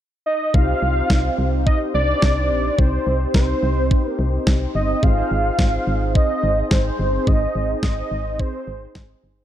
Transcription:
0.26 analog synth lead D#5
0.54 fm bass C2, analog polysynth C4 D#4 G4 C5, analog synth lead F5, kick
0.82 fm bass C2
1.10 fm bass C2, kick, snare
1.38 fm bass C2
1.66 analog synth lead D#5, kick
1.94 fm bass C2, analog synth lead D5
2.22 fm bass C2, kick, snare
2.50 fm bass A#1
2.79 fm bass C2, analog synth lead C5, kick
3.07 fm bass C2
3.34 fm bass C2, analog synth lead C5, kick, snare
3.63 fm bass C2
3.91 kick
4.10 analog synth lead A#4
4.19 fm bass C2
4.47 fm bass C2, kick, snare
4.75 fm bass G1, analog synth lead D#5
5.03 fm bass G#1, analog polysynth C4 D#4 G#4 C5, analog synth lead F5, kick
5.31 fm bass G#1
5.59 fm bass G#1, kick, snare
5.87 fm bass G#1
6.15 analog synth lead D#5, kick
6.43 fm bass G#1
6.71 fm bass G#1, analog synth lead C5, kick, snare
6.99 fm bass G1
7.27 fm bass G#1, analog synth lead D#5, kick
7.55 fm bass G#1
7.83 fm bass G#1, analog synth lead D#5, kick, snare
8.11 fm bass G#1
8.39 analog synth lead C5, kick
8.67 fm bass G#1
8.95 fm bass G#1, kick, snare
9.23 fm bass G1

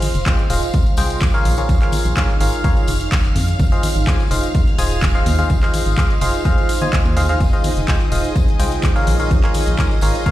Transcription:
Already playing: ambient pad D#4 C5, string machine F5 F6
0.02 open hi-hat, tambourine, high conga
0.15 fm bass F1, closed hi-hat, tambourine
0.22 ambient pad G#4, kick, closed hi-hat, tambourine
0.26 fm electric piano F4 G#4 C5 D#5 G5, clap
0.38 closed hi-hat, tambourine
0.50 fm bass D#1, fm electric piano F4 G#4 C5 D#5 F5, open hi-hat, tambourine
0.63 closed hi-hat, tambourine
0.73 kick, closed hi-hat, tambourine
0.86 closed hi-hat, tambourine
0.97 fm bass C2, fm electric piano F4 G#4 C5 D#5 G5, open hi-hat, tambourine
1.10 closed hi-hat, tambourine
1.21 kick, clap, closed hi-hat, tambourine
1.34 fm electric piano F4 G#4 A#4 C#5 F5, closed hi-hat, tambourine
1.45 fm bass A#1, open hi-hat, tambourine, high conga
1.58 fm electric piano F4 G#4 A#4 C#5 F5, closed hi-hat, tambourine
1.69 fm bass A#1, kick, closed hi-hat, tambourine
1.81 fm electric piano F4 G#4 A#4 C#5 F5, clap, closed hi-hat, tambourine
1.92 open hi-hat, tambourine, high conga
2.05 fm bass A#1, closed hi-hat, tambourine
2.16 fm electric piano F4 G#4 A#4 C#5 F5, kick, clap, closed hi-hat, tambourine
2.28 ambient pad C#5, closed hi-hat, tambourine
2.40 fm bass G#1, fm electric piano F4 G#4 A#4 C#5 F5, open hi-hat, tambourine
2.53 closed hi-hat, tambourine
2.64 fm electric piano F4 G#4 A#4 C#5 F5, kick, closed hi-hat, tambourine
2.77 closed hi-hat, tambourine
2.88 fm bass F1, open hi-hat, tambourine
3.00 closed hi-hat, tambourine
3.12 kick, clap, closed hi-hat, tambourine
3.25 closed hi-hat, tambourine
3.35 fm bass F2, open hi-hat, tambourine, high conga
3.48 closed hi-hat, tambourine
3.59 fm bass G#1, kick, closed hi-hat, tambourine
3.72 fm electric piano F4 G#4 C5 D#5 F5, closed hi-hat, tambourine
3.83 open hi-hat, tambourine, high conga
3.96 fm bass G#1, closed hi-hat, tambourine
4.07 fm electric piano F4 G#4 C5 D#5 G#5, kick, clap, closed hi-hat, tambourine
4.20 closed hi-hat, tambourine
4.29 fm bass F1, fm electric piano F4 G#4 C5 D#5 F5, ambient pad C5, open hi-hat, tambourine
4.44 closed hi-hat, tambourine
4.54 kick, closed hi-hat, tambourine
4.67 closed hi-hat, tambourine
4.78 fm bass D#1, fm electric piano F4 G#4 C5 D#5 G#5, open hi-hat, tambourine
4.91 closed hi-hat, tambourine
5.02 kick, clap, closed hi-hat, tambourine
5.15 fm electric piano F4 G#4 C5 D#5 F5, closed hi-hat, tambourine
5.26 fm bass D#2, open hi-hat, tambourine, high conga
5.39 fm electric piano F4 G#4 C5 D#5 F5, closed hi-hat, tambourine
5.50 fm bass G#1, kick, closed hi-hat, tambourine
5.63 fm electric piano F4 G#4 C5 D#5 F5, clap, closed hi-hat, tambourine
5.74 open hi-hat, tambourine, high conga
5.86 fm bass G#1, closed hi-hat, tambourine
5.97 fm electric piano F4 G#4 C5 D#5 F5, kick, clap, closed hi-hat, tambourine
6.10 closed hi-hat, tambourine
6.21 fm bass F1, fm electric piano F4 G#4 C5 D#5 F5, open hi-hat, tambourine
6.34 closed hi-hat, tambourine
6.45 fm electric piano F4 G#4 C5 D#5 F5, kick, closed hi-hat, tambourine
6.58 closed hi-hat, tambourine
6.69 open hi-hat, tambourine
6.82 fm electric piano F4 G#4 C5 D#5 G#5, closed hi-hat, tambourine, high conga
6.92 fm electric piano G#4 D#5 G#5, kick, clap, closed hi-hat, tambourine
7.05 fm bass D#2, closed hi-hat, tambourine
7.17 fm electric piano F4 G#4 C5 D#5 F5, open hi-hat, tambourine, high conga
7.29 fm electric piano F4 G#4 C5 D#5 F5, closed hi-hat, tambourine
7.40 fm bass F1, string machine D#5 D#6, kick, closed hi-hat, tambourine
7.53 fm electric piano F4 G#4 C5 D#5 F5, closed hi-hat, tambourine
7.64 open hi-hat, tambourine, high conga
7.77 fm bass F1, closed hi-hat, tambourine
7.88 fm electric piano F4 G#4 C5 D#5 G5, kick, clap, closed hi-hat, tambourine
8.01 closed hi-hat, tambourine
8.12 fm bass D#1, fm electric piano F4 G#4 C5 D#5 F5, open hi-hat, tambourine
8.24 closed hi-hat, tambourine
8.36 kick, closed hi-hat, tambourine
8.48 closed hi-hat, tambourine
8.59 fm bass C2, fm electric piano F4 G#4 C5 D#5 G5, open hi-hat, tambourine
8.72 closed hi-hat, tambourine
8.83 kick, clap, closed hi-hat, tambourine
8.96 fm electric piano F4 G#4 A#4 C#5 F5, closed hi-hat, tambourine
9.07 fm bass A#1, open hi-hat, tambourine, high conga
9.20 fm electric piano F4 G#4 A#4 C#5 F5, closed hi-hat, tambourine
9.31 fm bass A#1, kick, closed hi-hat, tambourine
9.43 fm electric piano F4 G#4 A#4 C#5 F5, clap, closed hi-hat, tambourine
9.54 ambient pad C#5, open hi-hat, tambourine, high conga
9.67 fm bass A#1, closed hi-hat, tambourine
9.78 fm electric piano F4 G#4 A#4 C#5 F5, kick, clap, closed hi-hat, tambourine
9.91 closed hi-hat, tambourine
10.01 fm bass G#1, fm electric piano F4 G#4 A#4 C#5 F5, open hi-hat, tambourine
10.15 closed hi-hat, tambourine
10.26 fm electric piano F4 G#4 A#4 C#5 F5, kick, closed hi-hat, tambourine

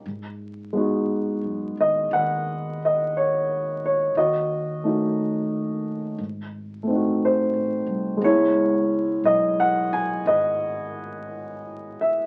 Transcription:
0.06 upright bass G#2
0.73 grand piano G#3 B3 D#4
0.78 grand piano F#4
1.43 upright bass F#2
1.77 upright bass D#2, grand piano D#5
2.11 upright bass D#2, grand piano F#5
2.15 grand piano B4
2.85 grand piano D#5
3.17 grand piano C#5
3.86 grand piano C#5
4.15 upright bass D#2, grand piano F#4 D#5
4.84 grand piano A3 C#4 D#4 F#4
6.18 upright bass G#1
6.83 grand piano A3
6.87 grand piano C4 D#4
6.95 grand piano F#4
7.25 grand piano C5
7.54 upright bass A1
7.87 upright bass C2
8.17 grand piano G#3
8.21 upright bass C#2, grand piano B3 C#4 C#5
8.25 grand piano E4
9.24 upright bass B1, grand piano D#5
9.60 grand piano F#5
9.93 grand piano G#5
10.26 upright bass G#1, grand piano B4 D#5
12.01 grand piano E5, muted upright bass stroke

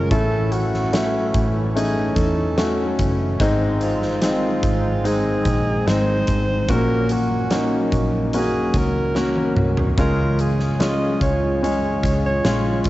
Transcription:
Already playing: grand piano G#3 C#4 F4, analog synth pad C#4
0.11 fingered electric bass A1, grand piano A2 A3 C#4 E4, analog synth pad E3 A3, alto saxophone A4, kick, closed hi-hat
0.52 alto saxophone F#4, closed hi-hat
0.74 snare
0.93 grand piano A3 C#4 E4, snare, closed hi-hat
1.34 fingered electric bass A1, kick, closed hi-hat
1.76 grand piano A3 C#4 D#4, alto saxophone G#4, closed hi-hat
2.16 fingered electric bass E2, alto saxophone A4, kick, closed hi-hat
2.58 grand piano A3 C#4 F#4, snare, closed hi-hat
2.99 fingered electric bass F#1, kick, closed hi-hat
3.40 fingered electric bass G#1, grand piano G#2 G#3 C4 D#4, analog synth pad D#3 G#3 C4, kick, closed hi-hat
3.81 alto saxophone F4, closed hi-hat
4.02 snare
4.22 grand piano G#3 C4 D#4, alto saxophone F4, snare, closed hi-hat
4.63 fingered electric bass G#1, kick, closed hi-hat
5.04 grand piano G#3 C4 D#4, alto saxophone G#4, closed hi-hat
5.45 fingered electric bass A#1, kick, closed hi-hat
5.87 fingered electric bass G#1, grand piano G#3 C4 D#4, alto saxophone C5, snare, closed hi-hat
6.27 fingered electric bass G#1, kick, closed hi-hat
6.68 fingered electric bass A#1, grand piano A#2 G#3 C#4 F#4, analog synth pad F#3 A#3 C#4, alto saxophone A#4, kick, closed hi-hat
6.76 grand piano A#3
7.09 alto saxophone F#4, closed hi-hat
7.50 grand piano A#3 C#4 D#4, snare, closed hi-hat
7.92 fingered electric bass A#1, kick, closed hi-hat
8.33 grand piano A#3 C#4 F#4, alto saxophone G#4, closed hi-hat
8.74 fingered electric bass C#2, alto saxophone A#4, kick, closed hi-hat
9.15 grand piano A#3 C#4 F#4, snare
9.36 high tom
9.56 fingered electric bass C2, mid tom
9.77 floor tom
9.98 fingered electric bass C#2, grand piano C#3 G#3 C#4 F4, analog synth pad C#3 F4 G#4, alto saxophone A#4, kick, closed hi-hat
10.39 alto saxophone G#4, closed hi-hat
10.59 snare
10.79 grand piano G#3 C#4 F4, alto saxophone D#5, snare, closed hi-hat
11.21 fingered electric bass C#2, alto saxophone C#5, kick, closed hi-hat
11.63 grand piano G#3 C#4 G#4, alto saxophone C#5, closed hi-hat
12.03 fingered electric bass C#2, kick, closed hi-hat
12.26 alto saxophone C#5
12.44 fingered electric bass A#1, grand piano G#3 C#4 F4, snare, closed hi-hat
12.84 fingered electric bass F#1, kick, closed hi-hat

